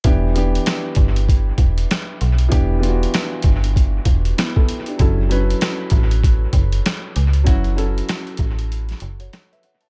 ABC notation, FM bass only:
X:1
M:4/4
L:1/8
Q:"Swing 16ths" 1/4=97
K:Edor
V:1 name="FM bass" clef=bass
E,,,2 z G,,,2 E,,, z B,,, | E,,,2 z G,,,2 E,,, z2 | F,,,2 z A,,,2 F,,, z C,, | F,,,2 z A,,,2 F,,, z2 |]